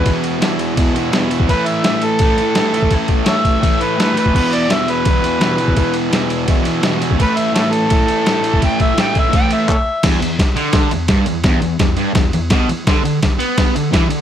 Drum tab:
CC |----------------|----------------|----------------|x---------------|
RD |x-x-x-x-x-x-x-x-|x-x-x-x-x-x-x-x-|x-x-x-x-x-x-x-x-|--x-x-x-x-x-x-x-|
CP |----------------|----------------|----------------|----------------|
SD |----o-------o---|----o-------o---|----o-------o---|----o-------o---|
BD |o-------o------o|o-------o------o|o-o---o-o------o|o-------o------o|

CC |----------------|----------------|----------------|x---------------|
RD |x-x-x-x-x-x-x-x-|x-x-x-x-x-x-x-x-|x-x-x-x-x-x-----|x-x-x-x-x-x-x-x-|
CP |----------------|----------------|------------x---|----------------|
SD |----o-------o---|----o-------o---|----o-----------|o---o---o---o---|
BD |o-------o------o|o-------o------o|o-o---o-o---o---|o---o---o---o---|

CC |----------------|----------------|
RD |x-x-x-x-x-x-x-x-|x-x-x-x-x-x-x-x-|
CP |----------------|----------------|
SD |o---o---o---o---|o---o---o---o---|
BD |o---o---o---o---|o---o---o---o---|